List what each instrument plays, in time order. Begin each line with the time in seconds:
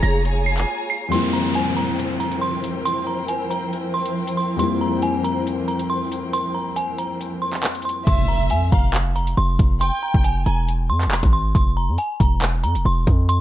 Already playing: grand piano G#3 A#3 C#4 F4 G#4, string section F4 G#4 C#5 A#5
0.03 808-style bass F1, violin section A#5, synth bell A#6, closed hi-hat
0.24 violin section G#5, closed hi-hat
0.46 synth bell C7
0.58 clap, closed hi-hat
0.90 synth bell C7
1.08 grand piano F2 G3 A#3, string section F3 E4 A#4 C5 G5, synth bell C6, closed hi-hat, downlifter
1.13 grand piano C4 E4
1.33 synth bell A#5
1.54 synth bell G#5, closed hi-hat
1.77 synth bell A#5, closed hi-hat
1.99 closed hi-hat
2.20 synth bell A#5, closed hi-hat
2.32 closed hi-hat
2.41 synth bell C6
2.64 closed hi-hat
2.85 synth bell C6, closed hi-hat
3.07 synth bell A#5
3.28 synth bell G#5, closed hi-hat
3.51 synth bell A#5, closed hi-hat
3.73 closed hi-hat
3.94 synth bell C6
4.06 closed hi-hat
4.27 closed hi-hat
4.37 synth bell C6
4.56 grand piano F2 G3 A#3, synth bell C6, closed hi-hat
4.61 grand piano C4 E4
4.81 synth bell A#5
5.02 synth bell G#5, closed hi-hat
5.24 synth bell A#5, closed hi-hat
5.47 closed hi-hat
5.68 synth bell A#5, closed hi-hat
5.79 closed hi-hat
5.90 synth bell C6
6.12 closed hi-hat
6.33 synth bell C6, closed hi-hat
6.55 synth bell A#5
6.76 synth bell G#5, closed hi-hat
6.98 synth bell A#5, closed hi-hat
7.21 closed hi-hat
7.42 synth bell C6
7.53 clap, closed hi-hat
7.63 clap
7.75 closed hi-hat
7.82 synth bell C6, closed hi-hat
7.89 closed hi-hat
8.07 808-style bass F1, violin section E5, synth bell C6, kick, closed hi-hat, crash, impact
8.28 synth bell A#5
8.50 808-style bass F2, synth bell G#5, closed hi-hat
8.72 808-style bass F1, violin section F5, synth bell A#5, kick, closed hi-hat
8.94 clap, closed hi-hat
9.16 synth bell A#5, closed hi-hat
9.27 closed hi-hat
9.37 808-style bass F1, synth bell C6
9.59 808-style bass F1, kick, closed hi-hat
9.81 violin section G5, synth bell C6, closed hi-hat
10.03 synth bell A#5
10.14 808-style bass F1, kick
10.24 synth bell G#5, closed hi-hat
10.46 808-style bass E1, violin section G#5, synth bell A#5, closed hi-hat
10.69 closed hi-hat
10.90 808-style bass F2, synth bell C6
11.01 clap, closed hi-hat
11.06 808-style bass E1
11.11 clap
11.23 808-style bass G#1, kick, closed hi-hat
11.33 synth bell C6
11.55 808-style bass F1, synth bell C6, kick, closed hi-hat
11.77 synth bell A#5
11.88 808-style bass F2
11.98 synth bell G#5, closed hi-hat
12.20 808-style bass E1, synth bell A#5, kick, closed hi-hat
12.42 clap, closed hi-hat
12.64 808-style bass F2, synth bell A#5, closed hi-hat
12.75 808-style bass E1, closed hi-hat
12.85 808-style bass E1, synth bell C6
13.07 808-style bass F2, kick, closed hi-hat
13.29 synth bell C6, closed hi-hat